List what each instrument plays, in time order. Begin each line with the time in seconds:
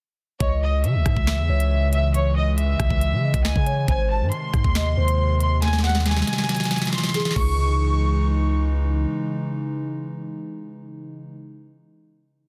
0.40 808-style bass C#2, analog synth pad C#3 E3 G#3, violin section C#5, soft synth lead D#5, kick, closed hi-hat
0.62 violin section D#5
0.84 808-style bass C#3, violin section E5, closed hi-hat
0.95 808-style bass C#2
1.06 808-style bass G#2, kick, cross-stick, closed hi-hat
1.17 808-style bass C#2, kick
1.27 soft synth lead E5, finger snap, snare, closed hi-hat
1.38 808-style bass E2
1.49 808-style bass C#2, soft synth lead C#5
1.60 closed hi-hat
1.93 violin section E5, closed hi-hat
2.14 violin section C#5, closed hi-hat
2.36 violin section D#5
2.58 violin section E5, closed hi-hat
2.80 808-style bass C#2, kick, cross-stick, closed hi-hat
2.90 808-style bass C#2, kick
3.01 closed hi-hat
3.12 808-style bass C#3
3.23 soft synth lead D#5
3.34 808-style bass C#2, kick, closed hi-hat
3.45 violin section G#5, finger snap, snare
3.56 808-style bass C#3, kick
3.66 soft synth lead C#5, closed hi-hat
3.88 808-style bass G#1, analog synth pad C3 D#3 G#3, soft synth lead C5, violin section G#5, kick, closed hi-hat
4.10 violin section A5
4.21 808-style bass G#2
4.32 violin section C6, closed hi-hat
4.54 808-style bass G#2, kick, cross-stick, closed hi-hat
4.64 808-style bass D#2, kick
4.75 soft synth lead D#5, finger snap, snare, closed hi-hat
4.97 808-style bass D#2, soft synth lead C5
5.08 closed hi-hat
5.40 violin section C6, closed hi-hat
5.62 violin section G#5, snare, closed hi-hat
5.68 snare
5.73 snare
5.78 snare
5.84 violin section F#5, snare
5.89 snare
5.95 snare
6.00 snare
6.06 violin section G#5, snare, closed hi-hat
6.11 snare
6.17 snare
6.22 snare
6.27 snare, closed hi-hat
6.33 snare
6.38 snare
6.44 snare
6.49 snare, closed hi-hat
6.55 snare, closed hi-hat
6.60 snare, closed hi-hat
6.65 snare
6.71 snare, closed hi-hat
6.76 snare, closed hi-hat
6.82 snare, closed hi-hat
6.87 snare
6.93 violin section C6, snare
6.98 snare
7.03 snare
7.09 snare
7.14 soft synth lead G#4, snare, closed hi-hat
7.20 snare
7.25 snare
7.31 snare
7.36 808-style bass C#2, analog synth pad C#3 E3 G#3 D#4, violin section C#6, kick, crash